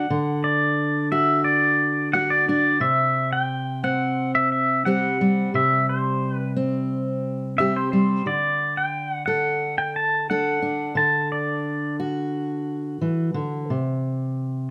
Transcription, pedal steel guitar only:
0.00 0.45 F#5 medium
0.44 1.11 D5 medium
1.12 1.43 E5 medium
1.44 2.09 D5 medium
2.13 2.29 F#5 medium
2.30 2.47 D5 medium
2.49 2.83 D5 medium
2.81 3.32 E5 medium
3.33 3.84 G5 medium
3.84 4.31 F#5 medium
4.35 4.50 E5 medium
4.52 4.83 E5 medium
4.85 5.55 F#5 medium
5.55 5.86 E5 medium
5.89 6.33 C5 medium
6.33 6.52 B4 medium
7.58 7.74 E5 medium
7.76 7.91 C5 medium
7.92 8.27 C5 medium
8.27 8.79 D5 medium
8.77 9.12 G5 medium
9.12 9.24 F#5 medium
9.26 9.78 F#5 medium
9.78 9.94 G5 medium
9.96 10.28 A5 medium
10.30 10.97 F#5 medium
10.97 11.29 A5 medium
11.32 11.96 D5 medium

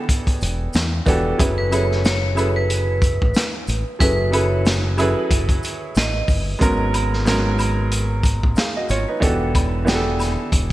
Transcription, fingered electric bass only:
0.42 0.67 E1 medium
0.75 0.99 E2 loud
1.07 1.31 E1 medium
1.40 3.18 F#1 loud
3.22 3.32 A1 medium
3.68 3.82 A1 medium
4.00 5.13 F#1 loud
5.31 5.56 F#1 loud
5.96 6.21 A1 loud
6.28 6.53 G1 medium
6.61 8.39 G#1 loud
8.44 8.54 A1 medium
8.90 9.04 G#1 loud
9.22 10.35 E1 loud
10.52 10.72 E1 loud

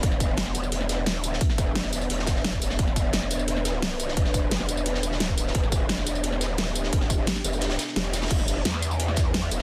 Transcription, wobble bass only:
0.03 0.99 E1 loud
0.99 1.26 D#1 loud
1.26 1.40 D1 loud
1.58 2.09 E1 loud
2.10 2.43 E1 medium
2.44 2.60 E1 loud
2.62 2.78 E1 loud
2.79 4.15 E1 loud
4.17 5.16 E1 loud
5.16 5.38 D1 loud
5.38 5.53 C1 loud
5.55 6.51 E1 loud
6.51 6.78 D#1 loud
6.78 6.91 D1 loud
6.93 7.26 E1 medium
7.44 7.78 F1 loud
7.96 8.29 E1 medium
8.31 8.64 E1 loud
8.65 9.50 E2 medium
9.51 9.62 E1 loud

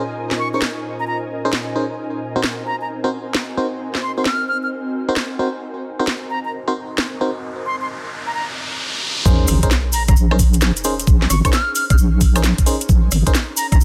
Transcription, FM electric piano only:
0.54 0.62 C#4 medium
0.54 0.62 D#4 medium
0.54 0.62 G#4 medium
0.54 0.62 A#4 medium
0.54 0.62 C5 medium
1.45 1.50 C#4 medium
1.45 1.50 D#4 medium
1.45 1.50 G#4 medium
1.45 1.50 A#4 medium
1.45 1.50 C5 loud
1.76 1.85 C#4 medium
1.76 1.85 D#4 medium
1.76 1.85 G#4 medium
1.76 1.85 A#4 medium
1.76 1.85 C5 medium
2.36 2.41 C4 medium
2.36 2.41 D#4 medium
2.36 2.41 F#4 medium
2.36 2.41 A#4 medium
2.36 2.41 C5 medium
3.04 3.09 C4 medium
3.04 3.09 D#4 medium
3.04 3.09 F#4 medium
3.04 3.09 A#4 medium
3.04 3.09 C5 medium
3.57 3.67 C4 medium
3.57 3.66 D#4 medium
3.57 3.66 F#4 medium
3.57 3.67 A#4 medium
3.57 3.67 C5 medium
4.18 4.25 C4 medium
4.18 4.25 D#4 medium
4.18 4.25 F#4 medium
4.18 4.25 A#4 medium
4.18 4.25 C5 medium
5.09 5.13 C4 medium
5.09 5.13 D#4 medium
5.09 5.13 F#4 medium
5.09 5.13 A#4 medium
5.09 5.13 C5 loud
5.39 5.48 C4 medium
5.39 5.48 D#4 medium
5.39 5.48 F#4 medium
5.39 5.48 A#4 medium
5.39 5.48 C5 medium
5.99 6.04 C4 medium
5.99 6.04 D#4 medium
5.99 6.04 F#4 medium
5.99 6.04 A#4 medium
5.99 6.04 C5 loud
6.68 6.72 C4 medium
6.68 6.72 D#4 medium
6.68 6.72 F#4 medium
6.68 6.72 A#4 medium
6.68 6.72 C5 loud
7.21 7.30 C4 medium
7.21 7.30 D#4 medium
7.21 7.30 F#4 medium
7.21 7.30 A#4 medium
7.21 7.30 C5 medium
9.25 9.57 C#4 medium
9.25 9.57 D#4 medium
9.25 9.57 G#4 medium
9.25 9.57 A#4 medium
9.25 9.57 C5 loud
9.63 9.68 C#4 medium
9.63 9.68 D#4 medium
9.63 9.68 G#4 medium
9.63 9.68 A#4 medium
9.63 9.68 C5 loud
10.31 10.36 C#4 loud
10.31 10.36 D#4 medium
10.31 10.36 G#4 medium
10.31 10.36 A#4 medium
10.31 10.36 C5 loud
10.85 10.94 C#4 medium
10.85 10.94 D#4 medium
10.85 10.94 G#4 medium
10.85 10.94 A#4 medium
10.85 10.94 C5 medium
11.45 11.53 C#4 medium
11.45 11.53 D#4 medium
11.45 11.53 G#4 medium
11.45 11.53 A#4 medium
11.45 11.53 C5 medium
12.36 12.41 C#4 loud
12.36 12.41 D#4 medium
12.36 12.41 G#4 medium
12.36 12.41 A#4 medium
12.36 12.41 C5 loud
12.66 12.76 C#4 medium
12.66 12.75 D#4 medium
12.66 12.75 G#4 medium
12.66 12.76 A#4 medium
12.66 12.75 C5 medium
13.27 13.32 C#4 medium
13.27 13.32 D#4 medium
13.27 13.32 G#4 medium
13.27 13.32 A#4 medium
13.27 13.32 C5 loud

